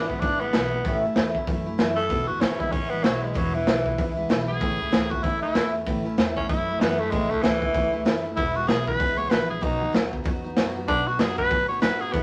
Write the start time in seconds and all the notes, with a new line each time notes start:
Already playing: G#1
0.08 E3 G#3 B3 E4, kick
0.20 A1 E3 G#3 B3 D4 E4, kick, open hi-hat
0.40 E3 G#3 B3 E4
0.53 B1 E2 B2 E3 G#3 B3 E4, snare, open hi-hat
0.74 E3 G#3 B3 E4
0.85 A1 A2 E3 A3 C#4 E4, kick, open hi-hat
1.04 A3 C#4 E4
1.16 E2 A2 E3 A3 C#4 E4, snare, open hi-hat
1.35 A3 C#4 E4, kick
1.47 F#2 E3 A3 C#4 E4, kick, open hi-hat
1.66 A3 C#4 E4
1.78 F#2 A2 E3 A3 C#4 E4, snare, open hi-hat
1.96 A3 C#4 E4 A4
2.10 E1 E2 B2 E3 G#3 B3 E4, kick, open hi-hat
2.27 G#1 E3 G#3 B3 E4 F#4
2.40 G#1 E2 B2 E3 G#3 B3 C#4 E4, snare, open hi-hat
2.59 E3 G#3 B3 E4, kick
2.71 A1 E3 G#3 B3 C#4 E4, kick, open hi-hat
2.90 E3 G#3 B3 E4
3.04 B1 E2 B2 E3 F#3 G#3 B3 E4, snare, open hi-hat
3.21 E3 G#3 B3 E4
3.33 E1 E2 B2 E3 F#3 G#3 B3 E4, kick, open hi-hat
3.54 E3 G#3 B3 E4
3.67 B1 E2 B2 E3 G#3 B3 E4, snare, open hi-hat
3.86 E3 G#3 B3 E4, kick
3.98 C#2 E3 G#3 B3 E4, kick, open hi-hat
4.16 E3 G#3 B3 E4
4.29 B1 E2 B2 E3 G#3 B3 E4, snare, open hi-hat
4.47 E3 G#3 B3 E4 G#4
4.60 A1 A2 E3 A3 C#4 E4, kick, open hi-hat
4.80 C#2 A3 C#4 E4
4.91 C#2 A2 E3 A3 C#4 E4, snare, open hi-hat
5.11 A3 C#4 E4 F#4, kick
5.22 C#2 E3 A3 C#4 E4, kick, open hi-hat
5.42 A3 C#4 E4
5.55 E2 A2 E3 A3 C#4 E4, snare, open hi-hat
5.73 A3 C#4 E4
5.86 A1 A2 E3 A3 C#4 E4, kick, open hi-hat
6.05 A3 C#4 E4
6.17 E2 A2 E3 A3 C#4 E4, snare, open hi-hat
6.37 A3 C#4 E4, kick
6.49 F#2 E3 A3 C#4 E4, kick, open hi-hat
6.69 A3 C#4 E4
6.80 F#2 A2 E3 A3 B3 C#4 E4, snare, open hi-hat
6.99 A3 C#4 E4
7.11 A1 A2 E3 G#3 A3 C#4 E4, kick, open hi-hat
7.30 C#2 A3 C#4 E4
7.42 C#2 A2 E3 A3 C#4 E4, snare, open hi-hat
7.61 A3 C#4 E4, kick
7.73 C#2 E3 A3 C#4 E4, kick, open hi-hat
7.92 A3 C#4 E4
8.05 F#1 A2 E3 A3 C#4 E4, snare, open hi-hat
8.23 A3 C#4 E4
8.36 E1 E2 B2 E3 G#3 B3 E4, kick, open hi-hat
8.55 E3 G#3 B3 E4 F#4
8.67 B1 E2 B2 E3 G#3 B3 E4 G#4, snare, open hi-hat
8.86 E3 G#3 B3 E4 B4, kick
8.98 C#2 E3 G#3 B3 E4, kick, open hi-hat
9.16 E3 G#3 B3 E4 C#5
9.29 A#1 E2 B2 E3 G#3 B3 E4 B4, snare, open hi-hat
9.49 E3 G#3 B3 E4 G#4
9.61 B1 B2 F#3 B3 D#4 F#4, kick, open hi-hat
9.81 D#2 B3 D#4 F#4
9.92 D#2 B2 F#3 B3 D#4 F#4, snare, open hi-hat
10.12 B3 D#4 F#4, kick
10.24 E2 F#3 B3 D#4 F#4, kick, open hi-hat
10.44 B3 D#4 F#4
10.57 F#2 B2 F#3 B3 D#4 F#4, snare, open hi-hat
10.75 B3 D#4 F#4
10.88 B1 B2 F#3 B3 D4 D#4 F#4, kick, open hi-hat
11.07 B3 D#4 F#4
11.19 F#2 B2 F#3 B3 D#4 F#4 G#4, snare, open hi-hat
11.38 B3 D#4 F#4 B4, kick
11.50 A2 F#3 B3 D#4 F#4, kick, open hi-hat
11.68 B3 D#4 F#4 C#5
11.80 G#2 B2 F#3 B3 D#4 F#4 B4, snare, open hi-hat
12.00 B3 D#4 F#4 G#4
12.12 E1 E2 B2 E3 G#3 B3 E4, kick, open hi-hat